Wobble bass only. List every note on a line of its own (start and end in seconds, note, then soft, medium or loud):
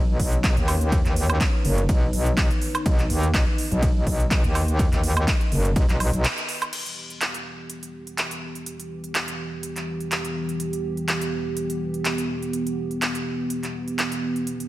0.00 0.18 B1 loud
0.20 0.55 B1 loud
0.57 1.03 D#2 loud
1.05 1.39 D#2 loud
1.65 1.87 F#1 loud
1.89 2.11 B1 loud
2.13 2.48 B1 loud
2.86 3.08 B1 loud
3.10 3.32 D#2 medium
3.34 3.45 B1 loud
3.71 4.05 B1 loud
4.07 4.42 B1 loud
4.44 4.90 D#2 loud
4.92 5.26 D#2 loud
5.52 5.74 F#1 loud
5.76 5.87 B1 loud
5.89 6.11 B1 loud
6.13 6.24 B1 loud